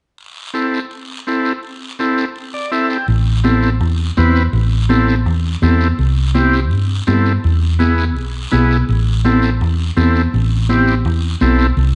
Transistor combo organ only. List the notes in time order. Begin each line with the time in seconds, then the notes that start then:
0.54 C4 E4 A4
1.27 C4 E4 A4
1.99 C4 E4 A4
2.54 D5
2.72 C4 E4 A4 E5
2.90 G5
3.44 C4 E4 A4
4.17 C4 E4 B4
4.89 C4 E4 A4
5.63 C4 E4 A4
6.35 C4 E4 G4
7.07 C4 E4 A4
7.79 B3 E4 G#4
8.52 B3 E4 G#4
9.25 C4 E4 A4
9.97 C4 E4 A4
10.70 C4 E4 G4
11.41 C4 E4 A4